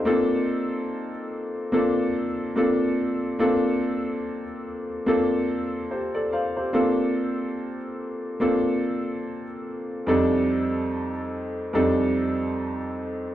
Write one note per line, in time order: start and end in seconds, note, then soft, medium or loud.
0.00 0.28 D#4 soft
0.05 1.08 A#3 medium
0.05 1.09 C4 medium
0.05 1.09 D4 medium
0.05 1.09 F4 medium
0.05 1.09 A4 medium
1.72 2.24 A#3 medium
1.72 2.24 C4 medium
1.72 2.24 D4 medium
1.72 2.25 F4 medium
1.72 2.25 A4 medium
2.56 3.07 A#3 medium
2.56 3.08 C4 medium
2.56 3.08 D4 medium
2.56 3.08 F4 medium
2.56 3.08 A4 medium
3.39 4.42 A#3 medium
3.39 4.43 C4 medium
3.39 4.43 D4 medium
3.39 4.43 F4 medium
3.39 4.43 A4 medium
5.06 5.58 A#3 medium
5.06 5.58 C4 medium
5.06 5.58 D4 medium
5.06 5.59 F4 medium
5.06 5.59 A4 medium
5.91 6.14 G4 soft
5.91 6.14 C5 medium
6.15 6.31 A4 medium
6.15 6.31 D5 medium
6.33 6.55 C5 medium
6.33 6.55 F5 medium
6.57 6.96 G4 soft
6.57 6.96 C5 medium
6.73 7.76 A#3 medium
6.73 7.77 C4 medium
6.73 7.77 D4 medium
6.73 7.77 F4 medium
6.73 7.77 A4 medium
8.40 9.43 A#3 medium
8.40 9.44 C4 medium
8.40 9.44 D4 medium
8.40 9.44 F4 medium
8.40 9.44 A4 medium
10.07 11.10 F2 medium
10.07 11.10 G3 medium
10.07 11.11 C4 medium
10.07 11.11 D4 medium
10.07 11.11 D#4 medium
10.07 11.11 A4 medium
11.73 12.77 F2 medium
11.73 12.77 G3 medium
11.73 12.77 C4 medium
11.73 12.78 D4 medium
11.73 12.78 D#4 medium
11.73 12.78 A4 medium